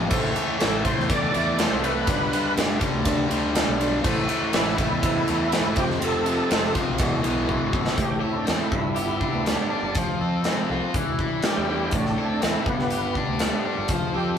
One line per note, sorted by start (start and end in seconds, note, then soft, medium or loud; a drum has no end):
0.00 0.10 A3 medium
0.10 0.33 A1 medium
0.10 0.33 A2 medium
0.10 0.34 E3 loud
0.10 0.35 A3 loud
0.10 0.50 E4 medium
0.10 0.51 A4 medium
0.10 0.51 C5 loud
0.10 kick loud
0.10 crash medium
0.35 0.58 A2 medium
0.35 0.59 E3 medium
0.35 0.60 A3 medium
0.35 ride medium
0.59 0.93 A1 medium
0.59 0.83 A2 medium
0.59 0.83 E3 medium
0.59 0.84 A3 medium
0.59 1.00 E4 medium
0.59 0.83 A4 medium
0.59 1.01 A4 medium
0.59 1.01 B4 medium
0.59 snare loud
0.59 ride medium
0.84 1.09 A2 medium
0.84 1.09 E3 loud
0.84 1.10 A3 loud
0.84 1.08 C5 medium
0.84 kick medium
0.84 ride medium
0.98 1.29 E2 medium
0.98 snare soft
1.10 1.31 A2 medium
1.10 1.32 E3 medium
1.10 1.33 A3 medium
1.10 1.49 E4 medium
1.10 1.49 A4 medium
1.10 1.49 B4 medium
1.10 1.61 D5 loud
1.10 kick loud
1.10 ride medium
1.32 1.66 E2 loud
1.32 1.56 A2 medium
1.32 1.57 E3 loud
1.32 1.57 A3 loud
1.32 ride medium
1.58 1.81 A2 medium
1.58 1.82 E3 medium
1.58 1.82 A3 medium
1.58 1.98 E4 medium
1.58 1.98 A4 medium
1.58 1.85 C5 medium
1.58 1.98 D5 medium
1.58 snare loud
1.58 ride medium
1.71 2.03 C2 medium
1.83 2.06 A2 medium
1.83 2.06 E3 medium
1.83 2.06 A3 medium
1.83 2.54 B4 medium
1.83 ride medium
2.07 2.29 G1 medium
2.07 2.32 G2 medium
2.07 2.32 D3 medium
2.07 2.33 G3 loud
2.07 2.47 D4 medium
2.07 2.47 G4 medium
2.07 2.48 B4 medium
2.07 kick loud
2.07 ride loud
2.29 2.54 G2 medium
2.29 2.55 D3 medium
2.29 ride medium
2.34 2.55 G2 medium
2.34 2.55 G3 medium
2.56 2.89 G1 loud
2.56 2.78 G2 medium
2.56 2.78 D3 medium
2.56 2.78 G3 medium
2.56 2.96 D4 medium
2.56 2.96 G4 medium
2.56 2.97 B4 medium
2.56 snare loud
2.56 ride loud
2.79 3.03 G2 medium
2.79 3.04 D3 loud
2.79 3.04 G3 loud
2.79 kick medium
2.79 ride medium
2.94 3.26 D2 medium
3.04 3.27 G2 medium
3.04 3.28 D3 medium
3.04 3.28 G3 medium
3.04 3.45 D4 medium
3.04 3.46 G4 medium
3.04 3.45 B4 loud
3.04 kick loud
3.04 ride loud
3.28 3.62 D2 loud
3.28 3.52 G2 loud
3.28 3.52 D3 loud
3.28 3.52 G3 loud
3.28 ride medium
3.53 3.78 G2 medium
3.53 3.78 D3 medium
3.53 3.79 G3 medium
3.53 3.94 D4 medium
3.53 3.95 G4 medium
3.53 3.95 B4 medium
3.53 3.78 G5 medium
3.53 snare loud
3.53 ride loud
3.67 3.99 B1 medium
3.79 4.03 G2 medium
3.79 4.02 D3 medium
3.79 4.03 G3 loud
3.79 4.03 D5 medium
3.79 ride medium
4.03 4.26 A1 loud
4.03 4.27 A2 loud
4.03 4.27 E3 loud
4.03 4.27 A3 loud
4.03 4.43 E4 medium
4.03 4.44 A4 medium
4.03 4.44 C5 loud
4.03 kick loud
4.03 crash medium
4.28 4.52 A2 medium
4.28 4.52 E3 medium
4.28 4.53 A3 medium
4.28 ride medium
4.53 4.86 A1 medium
4.53 4.76 A2 medium
4.53 4.77 E3 medium
4.53 4.77 A3 medium
4.53 4.93 E4 medium
4.53 4.77 E4 medium
4.53 4.93 A4 medium
4.53 4.93 C5 medium
4.53 snare loud
4.53 ride medium
4.68 snare soft
4.77 5.01 A2 medium
4.77 5.01 E3 loud
4.77 5.01 A3 loud
4.77 5.81 E4 medium
4.77 kick medium
4.77 ride medium
4.92 5.23 E2 medium
5.02 5.27 A2 medium
5.02 5.27 E3 medium
5.02 5.28 A3 medium
5.02 5.43 E4 medium
5.02 5.43 A4 medium
5.02 5.43 C5 medium
5.02 kick loud
5.02 ride medium
5.28 5.60 E2 loud
5.28 5.51 A2 medium
5.28 5.53 E3 loud
5.28 5.53 A3 loud
5.28 ride medium
5.52 5.75 A2 medium
5.52 5.76 E3 medium
5.52 5.76 A3 medium
5.52 5.77 E4 medium
5.52 5.76 A4 medium
5.52 5.76 C5 medium
5.52 snare loud
5.52 ride loud
5.66 5.76 F#1 medium
5.76 6.40 F1 medium
5.76 5.99 F2 medium
5.76 5.99 C3 medium
5.76 6.00 F3 loud
5.76 6.36 F4 medium
5.76 5.90 G4 medium
5.76 6.36 A4 medium
5.76 6.36 C5 medium
5.76 kick loud
5.76 ride medium
5.90 snare soft
6.01 6.24 F2 loud
6.01 6.25 C3 loud
6.01 6.25 F3 loud
6.01 6.73 A4 medium
6.01 ride medium
6.25 6.50 F2 medium
6.25 6.50 C3 medium
6.25 6.50 F3 medium
6.25 ride medium
6.50 6.83 F1 loud
6.50 6.74 F2 medium
6.50 6.74 C3 medium
6.50 6.74 F3 medium
6.50 6.90 F4 medium
6.50 6.90 A4 medium
6.50 6.90 C5 medium
6.50 snare loud
6.50 ride medium
6.64 snare soft
6.75 6.98 F2 medium
6.75 6.98 C3 medium
6.75 6.98 F3 loud
6.75 kick medium
6.75 ride medium
6.90 6.99 B1 medium
6.98 7.21 E1 loud
6.98 7.21 E2 medium
6.98 7.22 B2 medium
6.98 7.22 E3 loud
6.98 7.39 E4 medium
6.98 7.39 G#4 medium
6.98 7.39 B4 medium
6.98 kick loud
6.98 ride medium
7.23 7.56 B1 loud
7.23 7.47 E2 medium
7.23 7.48 B2 medium
7.23 7.48 E3 loud
7.23 ride medium
7.47 7.71 E2 medium
7.47 7.71 B2 medium
7.47 7.71 E3 medium
7.47 7.87 E4 medium
7.47 7.87 G#4 medium
7.47 7.88 B4 medium
7.47 kick medium
7.62 7.93 G#1 medium
7.72 7.96 E2 medium
7.72 7.96 B2 medium
7.72 7.96 E3 medium
7.72 kick medium
7.87 snare medium
7.97 8.19 A1 medium
7.97 8.71 A2 medium
7.97 8.22 G4 medium
7.97 kick loud
7.97 closed hi-hat medium
8.21 8.71 C4 medium
8.21 8.35 E4 medium
8.21 8.71 A4 medium
8.36 8.60 D4 medium
8.45 8.59 E2 medium
8.45 8.71 A3 medium
8.45 8.71 C4 medium
8.45 snare loud
8.45 closed hi-hat medium
8.56 8.59 D#4 soft
8.60 9.44 E4 medium
8.71 9.25 G1 medium
8.71 9.95 G2 medium
8.71 kick medium
8.95 9.44 B3 medium
8.95 9.95 G4 medium
8.95 closed hi-hat medium
9.21 9.95 G3 medium
9.21 9.69 D4 medium
9.21 kick medium
9.33 9.55 D2 medium
9.45 9.95 G3 medium
9.45 9.95 B3 medium
9.45 9.94 D4 medium
9.45 snare loud
9.45 closed hi-hat medium
9.70 9.95 D4 medium
9.70 9.96 G4 medium
9.83 9.93 G1 medium
9.95 10.17 F1 medium
9.95 10.95 F3 medium
9.95 kick loud
9.95 closed hi-hat medium
10.19 10.42 F2 medium
10.19 10.94 C4 medium
10.19 10.95 A4 medium
10.44 10.94 G3 medium
10.44 10.95 C4 medium
10.44 snare loud
10.44 closed hi-hat medium
10.70 10.80 C2 medium
10.70 10.95 F4 medium
10.94 11.05 E1 loud
10.94 11.93 E3 medium
10.94 kick loud
10.94 closed hi-hat medium
11.08 11.28 E1 medium
11.19 11.93 G3 medium
11.19 11.68 E4 medium
11.19 kick medium
11.43 11.93 G3 medium
11.43 11.93 D4 medium
11.43 11.68 G4 medium
11.43 snare loud
11.43 closed hi-hat medium
11.58 11.88 E2 medium
11.68 11.93 E4 medium
11.68 11.92 G4 medium
11.68 11.93 B4 medium
11.91 12.14 A1 loud
11.91 12.67 A2 medium
11.91 12.17 D4 medium
11.91 kick loud
11.91 closed hi-hat medium
12.05 snare soft
12.17 12.67 C4 medium
12.17 12.42 D4 medium
12.17 12.67 A4 medium
12.40 12.54 E2 medium
12.40 12.66 A3 medium
12.40 12.66 C4 medium
12.40 12.67 E4 medium
12.40 snare loud
12.40 closed hi-hat medium
12.66 13.20 G1 loud
12.66 13.91 G2 medium
12.66 13.15 B3 medium
12.66 kick loud
12.79 snare soft
12.90 13.37 B3 medium
12.90 13.90 G4 medium
12.90 closed hi-hat medium
13.13 13.89 G3 medium
13.13 kick medium
13.17 13.64 D4 medium
13.29 13.49 D2 medium
13.38 13.91 G3 medium
13.38 13.89 B3 medium
13.38 snare loud
13.38 closed hi-hat medium
13.63 13.90 D4 medium
13.63 13.89 G4 medium
13.78 13.89 G1 medium
13.88 14.11 F1 medium
13.88 14.38 F3 medium
13.88 kick loud
13.88 closed hi-hat medium
14.13 14.36 F2 medium
14.13 14.38 C4 medium
14.13 14.38 G4 medium
14.13 14.38 A4 medium